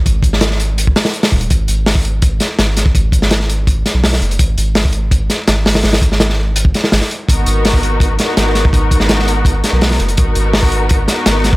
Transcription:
<<
  \new Staff \with { instrumentName = "String section" } { \time 4/4 \key gis \minor \tempo 4 = 166 r1 | r1 | r1 | r1 |
r1 | <b dis' fis' ais'>2~ <b dis' fis' ais'>8 <b dis' fis' ais'>4. | <b dis' fis' ais'>2~ <b dis' fis' ais'>8 <b dis' fis' ais'>4. | <b dis' fis' ais'>2~ <b dis' fis' ais'>8 <b dis' fis' ais'>4. | }
  \new Staff \with { instrumentName = "Sub bass" } { \clef bass \time 4/4 \key gis \minor gis,,8 gis,,2 r4 dis,,8 | gis,,8 gis,,2 r8 gis,,4 | gis,,8 gis,,2 r16 b,,8. fis,,8 | gis,,8 gis,,2 r8 gis,,4 |
gis,,8 gis,,2 r8 gis,,16 r8. | gis,,8 gis,,2 r8 gis,,4 | gis,,8 gis,,2 r16 b,,8. fis,,8 | gis,,8 gis,,2 r8 gis,,4 | }
  \new DrumStaff \with { instrumentName = "Drums" } \drummode { \time 4/4 <hh bd>8 <hh bd>16 sn16 <hh sn>16 sn16 hh8 hh16 bd16 <hho sn>16 <hho sn>16 hh16 <hho sn>16 bd16 hh16 | <hh bd>8 hh8 <hho sn>16 bd16 hh8 <hh bd>8 <hh sn>8 <hh sn>8 <hh sn>16 bd16 | <hh bd>8 <hh bd>16 sn16 <hh sn>16 sn16 hh8 <hh bd>8 <hh sn>8 <hho sn>16 sn16 hh16 hh16 | <hh bd>8 hh8 <hho sn>16 bd16 hh8 <hh bd>8 <hh sn>8 <hh sn>8 <hho sn>16 <hho sn>16 |
<hho sn>16 <hho sn>16 <hh bd>16 sn16 <hh sn>16 sn8. hh16 bd16 <hh sn>16 sn16 <hho sn>16 sn16 hh8 | <hh bd>8 hh8 <hho sn>16 bd16 hh8 <hh bd>8 <hh sn>8 <hh sn>8 <hh sn>16 bd16 | <hh bd>8 <hh bd>16 sn16 <hh sn>16 sn16 hh8 <hh bd>8 <hh sn>8 <hho sn>16 sn16 hh16 hh16 | <hh bd>8 hh8 <hho sn>16 bd16 hh8 <hh bd>8 <hh sn>8 <hh sn>8 <hh sn>16 bd16 | }
>>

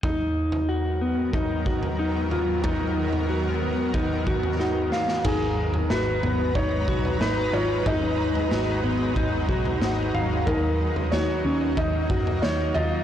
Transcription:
<<
  \new Staff \with { instrumentName = "Felt piano" } { \time 4/4 \key gis \dorian \tempo 4 = 92 r1 | r2. fis'4 | gis'4 b'4 cis''4 b'8 cis''8 | dis''2 r4 fis'4 |
ais'4 cis''4 dis''4 cis''8 dis''8 | }
  \new Staff \with { instrumentName = "Clean electric guitar" } { \time 4/4 \key gis \dorian dis'4 fis'8 b8 dis'8 fis'8 dis'8 eis'8 | dis'4 fis'8 b8 dis'8 fis'8 dis'8 eis''8 | dis'4 fis'8 b8 dis'8 fis'8 dis'8 eis'8 | dis'4 fis'8 b8 dis'8 fis'8 dis'8 eis''8 |
dis'4 fis'8 cis'8 dis'8 fis'8 dis'8 eis'8 | }
  \new Staff \with { instrumentName = "Ambient pad" } { \time 4/4 \key gis \dorian << { <gis, fis b ais'>1~ | <gis, fis b ais'>1 | <fis gis b' ais''>1~ | <fis gis b' ais''>1 |
ais1 | } \\ { dis1~ | dis1 | dis'1~ | dis'1~ |
dis'1 | } >> }
  \new Staff \with { instrumentName = "Picked electric bass" } { \clef bass \time 4/4 \key gis \dorian r1 | r1 | gis,,4 gis,,8 gis,,8 gis,,8 b,,8 gis,,8 gis,,8 | gis,,4 gis,,8 gis,,8 gis,,8 b,,8 gis,,8 gis,,8 |
dis,4 dis,8 dis,8 dis,8 fis,8 dis,8 dis,8 | }
  \new DrumStaff \with { instrumentName = "Drums" } \drummode { \time 4/4 <bd tomfh>8. tomfh16 r4 <bd tomfh>8 bd16 tomfh16 r8 tomfh8 | <bd tomfh>8. tomfh16 r4 <bd tomfh>8 bd16 tomfh16 sn8 sn16 sn16 | <cymc bd tomfh>8. tomfh16 sn8 tomfh8 <bd tomfh>8 bd16 tomfh16 sn4 | <bd tomfh>8. tomfh16 sn4 <bd tomfh>8 bd16 tomfh16 sn8 tomfh8 |
<bd tomfh>8. tomfh16 sn4 <bd tomfh>8 bd16 tomfh16 sn8 tomfh8 | }
>>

